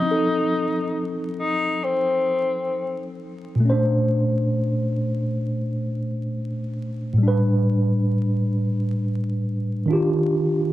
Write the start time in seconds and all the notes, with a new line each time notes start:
Already playing: F3 D#4
0.02 C4
0.07 D#4
0.11 A4
1.39 D#4
1.84 C4
3.56 A#2
3.60 A3
3.65 C#4
3.70 D4 C5
7.13 A2
7.18 G3
7.23 D4
7.28 B4
9.86 D#3 D4
9.90 F4 G4